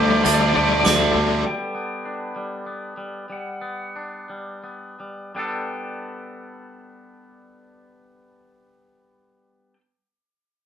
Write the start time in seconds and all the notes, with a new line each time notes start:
Already playing: D2 D3 G3 A3 D4 G4 E5 A5 G6
0.04 D5
0.11 D5
0.18 D5
0.24 D2 D3 G3 A3 D4 D5 A6, closed hi-hat
0.35 D5
0.42 D5
0.49 D5
0.54 D2 D3 G3 A3 D4 D5
0.64 D5
0.73 D5
0.80 D3 G3 D5
0.85 D2 A3 D4 D5 D6, snare, closed hi-hat
0.95 D5
1.02 D5
1.15 D2
1.45 G3 B3 A4 G5
1.75 B3
2.05 D4
2.36 G3
2.66 B3
2.97 G3
3.30 G3 F#5
3.61 B3
3.96 D4
4.30 G3
4.64 B3
5.00 G3
5.35 G3 B3 D4 A4 G5
5.39 A4